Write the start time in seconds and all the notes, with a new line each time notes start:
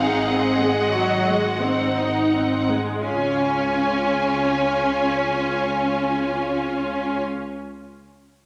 Already playing: G#1 G#4 F5 F#5
0.00 D#4
0.29 C4 D#5
0.62 G#3
0.93 F#3 F#4
1.27 G#3
1.61 C4 D#4 C5
1.98 D#4
2.34 C4
2.70 G#3
3.04 C#2 C#4 F4 C#5 G#5